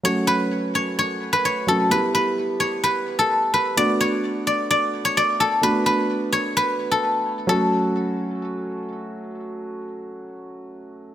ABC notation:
X:1
M:4/4
L:1/16
Q:1/4=129
K:F#phr
V:1 name="Guzheng"
c2 B2 z2 c2 c3 B c2 A2 | B2 B2 z2 c2 B3 A3 B2 | d2 c2 z2 d2 d3 c d2 A2 | B2 B2 z2 c2 B3 A4- A |
A12 z4 | z16 |]
V:2 name="Felt piano"
[F,A,CF]12- [F,A,CF]2 [F,A,CF]2 | [G,B,EG]16 | [A,B,DF]16 | [A,B,DF]16 |
[F,A,CF]16- | [F,A,CF]16 |]